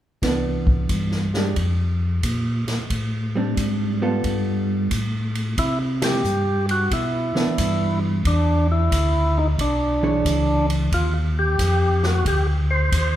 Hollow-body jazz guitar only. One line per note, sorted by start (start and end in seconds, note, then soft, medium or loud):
0.23 1.25 E3 soft
0.23 1.26 B3 soft
0.23 1.26 D4 soft
1.35 1.55 G#3 medium
1.35 1.55 D4 soft
1.35 1.56 G4 medium
3.35 3.98 G3 soft
3.35 3.98 C4 medium
3.35 3.99 D4 medium
4.02 4.87 G3 soft
4.02 4.87 B3 medium
4.02 4.87 F4 medium
4.02 4.87 A4 medium
7.35 8.20 E3 soft
7.35 8.21 B3 medium
7.35 8.21 D4 medium
10.03 10.87 E3 medium
10.03 10.88 D4 medium
10.03 10.88 G#4 medium
10.03 10.88 C#5 medium